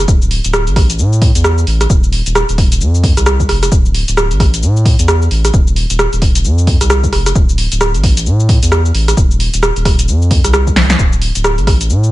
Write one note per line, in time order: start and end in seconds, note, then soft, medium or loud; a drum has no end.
0.08 0.40 D1 medium
0.08 kick loud
0.08 cabasa medium
0.22 cabasa soft
0.31 open hi-hat loud
0.44 0.69 D1 loud
0.44 closed hi-hat medium
0.44 cabasa medium
0.53 cross-stick loud
0.53 cabasa medium
0.67 1.01 A1 loud
0.67 closed hi-hat soft
0.67 cabasa soft
0.76 kick loud
0.76 cross-stick medium
0.76 open hi-hat medium
0.90 closed hi-hat medium
0.90 cabasa medium
0.99 1.31 A2 loud
0.99 cabasa medium
1.13 cabasa soft
1.22 kick loud
1.22 open hi-hat loud
1.35 1.64 E2 medium
1.35 closed hi-hat medium
1.35 cabasa medium
1.44 cross-stick loud
1.44 cabasa medium
1.58 cabasa soft
1.67 1.86 A1 medium
1.67 open hi-hat medium
1.81 cross-stick medium
1.81 closed hi-hat medium
1.81 cabasa medium
1.90 2.22 D#1 medium
1.90 kick loud
1.90 cabasa medium
2.03 cabasa soft
2.13 open hi-hat loud
2.26 2.44 D#1 loud
2.26 closed hi-hat medium
2.26 cabasa medium
2.35 cross-stick loud
2.35 cabasa medium
2.49 2.82 D#1 loud
2.49 closed hi-hat soft
2.49 cabasa soft
2.58 kick loud
2.58 open hi-hat medium
2.72 closed hi-hat medium
2.72 cabasa medium
2.81 3.13 F2 loud
2.81 cabasa medium
2.95 cabasa soft
3.04 kick loud
3.04 open hi-hat loud
3.17 3.46 C2 medium
3.17 cross-stick medium
3.17 closed hi-hat medium
3.17 cabasa medium
3.26 cross-stick loud
3.26 cabasa medium
3.40 kick medium
3.40 cabasa soft
3.49 3.68 F1 medium
3.49 cross-stick medium
3.49 open hi-hat medium
3.63 cross-stick medium
3.63 closed hi-hat medium
3.63 cabasa medium
3.72 4.04 D1 loud
3.72 kick loud
3.72 cabasa medium
3.85 cabasa soft
3.94 open hi-hat loud
4.08 4.32 D1 loud
4.08 closed hi-hat medium
4.08 cabasa medium
4.17 cross-stick loud
4.17 cabasa medium
4.31 4.64 A1 loud
4.31 closed hi-hat soft
4.31 cabasa soft
4.40 kick loud
4.40 cross-stick medium
4.40 open hi-hat medium
4.54 closed hi-hat medium
4.54 cabasa medium
4.63 4.95 A2 loud
4.63 cabasa medium
4.76 cabasa soft
4.85 kick loud
4.85 open hi-hat loud
4.99 5.28 E2 medium
4.99 closed hi-hat medium
4.99 cabasa medium
5.08 cross-stick loud
5.08 cabasa medium
5.22 cabasa soft
5.31 5.50 A1 medium
5.31 open hi-hat medium
5.45 cross-stick medium
5.45 closed hi-hat medium
5.45 cabasa medium
5.54 5.86 D#1 loud
5.54 kick loud
5.54 cabasa medium
5.67 cabasa soft
5.76 open hi-hat loud
5.90 6.08 D#1 loud
5.90 closed hi-hat medium
5.90 cabasa medium
5.99 cross-stick loud
5.99 cabasa medium
6.13 6.46 D#1 loud
6.13 closed hi-hat soft
6.13 cabasa soft
6.22 kick loud
6.22 open hi-hat loud
6.35 closed hi-hat medium
6.35 cabasa medium
6.44 6.77 F2 loud
6.44 cabasa medium
6.58 cabasa soft
6.67 kick loud
6.67 open hi-hat loud
6.81 7.10 C2 medium
6.81 cross-stick medium
6.81 closed hi-hat medium
6.81 cabasa medium
6.90 cross-stick loud
6.90 cabasa medium
7.04 kick medium
7.04 cabasa soft
7.13 7.32 F1 medium
7.13 cross-stick medium
7.13 open hi-hat medium
7.26 cross-stick medium
7.26 closed hi-hat medium
7.26 cabasa medium
7.35 7.68 D1 loud
7.35 kick loud
7.35 cabasa medium
7.49 cabasa soft
7.58 open hi-hat loud
7.72 7.96 D1 loud
7.72 closed hi-hat medium
7.72 cabasa medium
7.81 cross-stick loud
7.81 cabasa medium
7.94 8.28 A1 loud
7.94 closed hi-hat soft
7.94 cabasa soft
8.04 kick loud
8.04 open hi-hat loud
8.17 closed hi-hat medium
8.17 cabasa medium
8.26 8.59 A2 loud
8.26 cabasa medium
8.40 cabasa soft
8.49 kick loud
8.49 open hi-hat loud
8.63 8.92 E2 medium
8.63 closed hi-hat medium
8.63 cabasa medium
8.72 cross-stick loud
8.72 cabasa medium
8.85 cabasa soft
8.94 9.14 A1 medium
8.94 open hi-hat loud
9.08 cross-stick medium
9.08 closed hi-hat medium
9.08 cabasa medium
9.17 9.49 D#1 medium
9.17 kick loud
9.17 cabasa medium
9.31 cabasa soft
9.40 open hi-hat loud
9.54 9.71 D#1 medium
9.54 closed hi-hat medium
9.54 cabasa medium
9.63 cross-stick loud
9.63 cabasa medium
9.76 10.10 D#1 loud
9.76 closed hi-hat soft
9.76 cabasa soft
9.85 kick loud
9.85 cross-stick medium
9.85 open hi-hat loud
9.99 closed hi-hat medium
9.99 cabasa medium
10.08 10.40 F2 loud
10.08 cabasa medium
10.22 cabasa soft
10.31 kick loud
10.31 open hi-hat loud
10.44 10.74 C2 medium
10.44 cross-stick medium
10.44 closed hi-hat medium
10.44 cabasa medium
10.53 cross-stick loud
10.53 cabasa medium
10.67 kick medium
10.67 cabasa soft
10.76 10.96 C2 loud
10.76 snare medium
10.76 open hi-hat medium
10.90 snare loud
10.90 closed hi-hat medium
10.90 cabasa medium
10.99 11.31 D1 loud
10.99 kick loud
10.99 cabasa soft
11.13 cabasa soft
11.22 open hi-hat loud
11.35 11.60 D1 medium
11.35 closed hi-hat medium
11.35 cabasa medium
11.44 cross-stick loud
11.44 cabasa medium
11.58 11.91 A1 loud
11.58 closed hi-hat soft
11.58 cabasa soft
11.67 kick loud
11.67 cross-stick medium
11.67 open hi-hat loud
11.81 closed hi-hat medium
11.81 cabasa medium
11.90 12.12 A2 loud
11.90 cabasa medium
12.04 cabasa soft